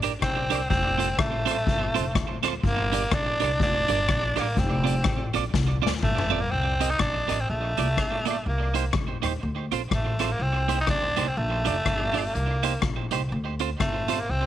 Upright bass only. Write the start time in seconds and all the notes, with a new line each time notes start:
0.23 C2
0.71 F1
1.19 A1
1.67 G1
1.97 F1
2.15 D2
2.64 G1
3.12 A#1
3.42 C2
3.60 F1
3.89 G1
4.09 A#1
4.37 A1
4.57 F1
5.05 A1
5.35 A#1
5.54 C2
5.85 D2
6.03 G1
6.53 C2
7.00 A#1
7.29 A1
7.50 A#1
7.78 C2
7.98 G1
8.46 C2
8.94 F2
9.23 D#2
9.43 D2
9.72 A#1
9.92 A1
10.40 C2
10.88 D2
11.18 C2
11.37 A#1
11.66 F1
11.86 G1
12.35 C2
12.83 A#1
13.13 C2
13.32 D2
13.80 G1
14.29 C2